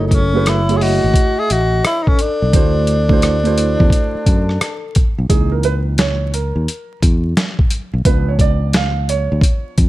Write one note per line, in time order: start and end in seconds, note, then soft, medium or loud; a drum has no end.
0.00 0.99 F#1 loud
0.00 0.18 A3 medium
0.00 0.18 E4 medium
0.00 0.19 F#4 medium
0.00 0.19 G#4 medium
0.00 0.19 C#5 medium
0.06 0.15 D#4 medium
0.06 0.11 B4 medium
0.11 0.50 C#4 medium
0.11 0.47 A4 medium
0.11 kick medium
0.11 closed hi-hat medium
0.33 0.58 A3 medium
0.33 0.58 E4 medium
0.33 0.58 F#4 medium
0.33 0.59 G#4 medium
0.33 0.59 B4 medium
0.46 0.78 E4 medium
0.46 0.76 C#5 medium
0.46 cross-stick loud
0.46 closed hi-hat medium
0.68 1.73 A3 medium
0.68 1.73 E4 medium
0.68 1.74 F#4 medium
0.68 1.74 G#4 medium
0.68 1.74 C#5 medium
0.68 closed hi-hat soft
0.74 0.84 G#4 medium
0.74 0.80 E5 medium
0.80 1.40 F#4 loud
0.80 1.38 D#5 medium
0.80 open hi-hat medium
1.04 1.15 G#1 medium
1.14 kick medium
1.14 closed hi-hat medium
1.37 1.53 G#4 medium
1.37 1.50 E5 medium
1.48 1.81 A1 medium
1.48 1.85 F#4 medium
1.48 1.84 D#5 medium
1.48 closed hi-hat medium
1.82 1.99 C#5 medium
1.82 cross-stick loud
1.82 closed hi-hat medium
1.86 2.05 E4 medium
1.99 2.09 D#4 medium
1.99 2.06 B4 soft
2.06 2.23 C#4 medium
2.06 2.16 A4 medium
2.06 kick medium
2.17 4.94 A4 medium
2.17 closed hi-hat medium
2.21 4.96 D4 medium
2.42 2.54 B1 medium
2.52 3.76 D2 medium
2.52 2.94 A3 medium
2.52 2.94 D4 medium
2.52 2.94 E4 medium
2.52 2.95 F#4 medium
2.52 2.95 C5 medium
2.52 kick loud
2.52 closed hi-hat medium
2.87 closed hi-hat medium
3.09 3.33 A3 medium
3.09 3.34 D4 medium
3.09 3.34 E4 medium
3.09 3.35 F#4 medium
3.09 3.35 C5 medium
3.09 kick medium
3.22 cross-stick medium
3.22 closed hi-hat medium
3.43 4.48 A3 medium
3.43 4.49 D4 medium
3.43 4.49 E4 medium
3.43 4.50 F#4 medium
3.43 4.50 C5 medium
3.43 closed hi-hat soft
3.58 closed hi-hat medium
3.80 3.91 E2 medium
3.80 kick medium
3.90 kick medium
3.90 closed hi-hat medium
4.15 muted fretless electric bass stroke soft
4.26 4.57 F#2 medium
4.26 kick medium
4.26 closed hi-hat medium
4.49 cross-stick soft
4.61 cross-stick medium
4.61 closed hi-hat medium
4.95 kick medium
4.95 closed hi-hat medium
5.18 5.29 B1 medium
5.29 6.52 C#2 medium
5.29 6.29 A#2 soft
5.29 6.29 E3 medium
5.29 6.29 D#4 medium
5.29 5.51 G#4 medium
5.29 kick loud
5.29 closed hi-hat medium
5.52 5.64 A#4 medium
5.63 5.72 B4 medium
5.63 closed hi-hat medium
5.98 6.31 C#5 medium
5.98 snare medium
5.98 closed hi-hat medium
6.34 6.98 A#4 medium
6.34 closed hi-hat medium
6.56 6.66 D#2 medium
6.68 closed hi-hat medium
7.02 7.33 E2 medium
7.02 kick medium
7.02 closed hi-hat medium
7.37 snare loud
7.37 closed hi-hat medium
7.59 kick medium
7.71 closed hi-hat medium
7.94 8.04 B1 medium
8.05 9.27 C#2 medium
8.05 9.89 F3 medium
8.05 9.89 B3 medium
8.05 9.89 D4 medium
8.05 8.29 B4 medium
8.05 kick loud
8.05 closed hi-hat medium
8.28 8.41 C#5 medium
8.39 8.76 D5 loud
8.39 kick medium
8.39 closed hi-hat medium
8.73 9.07 F5 medium
8.73 snare loud
8.73 closed hi-hat medium
9.09 9.74 C#5 loud
9.09 closed hi-hat medium
9.32 9.42 D2 medium
9.41 kick medium
9.41 closed hi-hat medium
9.78 9.89 F2 medium
9.78 kick medium
9.78 closed hi-hat medium